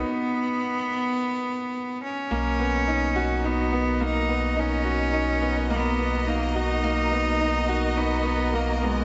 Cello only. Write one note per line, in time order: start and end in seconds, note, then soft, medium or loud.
0.00 2.02 B3 loud
2.04 3.47 C#4 loud
3.45 4.04 B3 loud
4.03 4.61 D#4 loud
4.59 5.70 C#4 loud
5.71 6.30 B3 loud
6.28 6.57 A#3 loud
6.56 7.99 D#4 loud
7.97 8.56 B3 loud
8.55 8.84 A#3 loud
8.82 9.04 G#3 loud